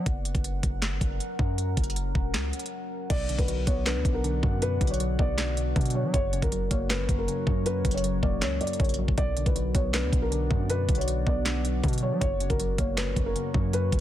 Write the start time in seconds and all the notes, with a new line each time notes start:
Already playing: F#5
0.06 F#1 F#3 C#4 A#4, kick, closed hi-hat
0.25 closed hi-hat
0.35 F#1, kick, closed hi-hat
0.44 closed hi-hat
0.63 F#1, kick, closed hi-hat
0.82 snare, clap, closed hi-hat
0.92 G1
1.01 F#1, kick, closed hi-hat
1.20 closed hi-hat
1.39 F#2, kick
1.58 closed hi-hat
1.77 F#1, kick, closed hi-hat, open hi-hat
1.84 closed hi-hat
1.90 closed hi-hat
1.96 closed hi-hat
2.15 E1, kick
2.34 C#2, snare, clap, closed hi-hat
2.53 closed hi-hat
2.59 closed hi-hat
2.66 closed hi-hat
3.10 B1 B2 B3 F#4 D5 F#5, kick, closed hi-hat, crash
3.29 D3, closed hi-hat
3.38 B1 B4, kick, closed hi-hat
3.48 F#3, closed hi-hat
3.67 B1 B3 C#5, kick, closed hi-hat
3.86 D4 B4, snare, clap, closed hi-hat
3.96 D2
4.05 B1 B2, kick, closed hi-hat
4.14 A#4
4.24 D3, closed hi-hat
4.43 F#2 F#3, kick
4.62 B2 B4, closed hi-hat
4.81 B1 D3, kick, closed hi-hat, open hi-hat
4.87 C#5, closed hi-hat
4.94 closed hi-hat
5.00 F#3, closed hi-hat
5.19 B1 B3 D5, kick
5.38 D4, snare, clap, closed hi-hat
5.57 B2, closed hi-hat
5.76 B2 D3, kick, closed hi-hat
5.81 closed hi-hat
5.85 closed hi-hat
5.90 closed hi-hat
5.95 F#3 C#5
6.04 F#3
6.14 F#1 F#2 F#3 F#4 A#4 C#5, kick, closed hi-hat
6.33 C#3, closed hi-hat
6.42 F#1 A#4, kick, closed hi-hat
6.52 F#3, closed hi-hat
6.71 F#1 A#3 C#5, kick, closed hi-hat
6.90 C#4 B4, snare, clap, closed hi-hat
6.99 G1
7.09 F#1 F#2, kick, closed hi-hat
7.19 A#4
7.28 C#3, closed hi-hat
7.47 F#2 F#3, kick
7.66 F#2 B4, closed hi-hat
7.85 F#1 C#3, kick, closed hi-hat, open hi-hat
7.91 C#5, closed hi-hat
7.98 closed hi-hat
8.04 F#3, closed hi-hat
8.23 E1 A#3 D5, kick
8.42 C#2 C#4 C#5, snare, clap, closed hi-hat
8.61 F#2 D5, closed hi-hat
8.67 closed hi-hat
8.73 closed hi-hat
8.80 A#1 C#3 C#5, kick, closed hi-hat
8.84 closed hi-hat
8.89 closed hi-hat
8.94 closed hi-hat
8.99 F#3
9.08 F#1, kick
9.18 B1 B2 B3 F#4 D5 F#5, kick, closed hi-hat
9.37 D3, closed hi-hat
9.46 B1 B4, kick, closed hi-hat
9.56 F#3, closed hi-hat
9.75 B1 B3 C#5, kick, closed hi-hat
9.94 D4 B4, snare, clap, closed hi-hat
10.03 D2
10.13 B1 B2, kick, closed hi-hat
10.22 A#4
10.32 D3, closed hi-hat
10.51 F#2 F#3, kick
10.70 B2 B4, closed hi-hat
10.89 B1 D3, kick, closed hi-hat, open hi-hat
10.95 C#5, closed hi-hat
11.01 closed hi-hat
11.08 F#3, closed hi-hat
11.27 B1 B3 D5, kick
11.46 D4, snare, clap, closed hi-hat
11.65 B2, closed hi-hat
11.84 B2 D3, kick, closed hi-hat
11.88 closed hi-hat
11.93 closed hi-hat
11.98 closed hi-hat
12.03 F#3 C#5
12.12 F#3
12.21 F#1 F#2 F#3 F#4 A#4 C#5, kick, closed hi-hat
12.40 C#3, closed hi-hat
12.50 F#1 A#4, kick, closed hi-hat
12.60 F#3, closed hi-hat
12.78 F#1 A#3 C#5, kick, closed hi-hat
12.97 C#4 B4, snare, clap, closed hi-hat
13.07 G1
13.16 F#1 F#2, kick, closed hi-hat
13.26 A#4
13.36 C#3, closed hi-hat
13.54 F#2 F#3, kick
13.73 F#2 B4, closed hi-hat
13.92 F#1 C#3, kick, closed hi-hat, open hi-hat